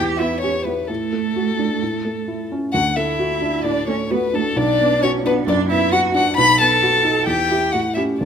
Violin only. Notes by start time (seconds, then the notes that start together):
0.17 E5
0.41 C#5
0.65 B4
0.88 A4
2.73 F#5
2.96 E5
3.63 D5
3.88 C#5
4.11 B4
4.35 A4
4.57 D5
5.03 C#5
5.26 B4
5.48 D5
5.70 E5
5.92 F#5
6.15 F#5
6.37 B5
6.61 A5
7.27 G5
7.72 F#5
7.94 E5
8.19 D5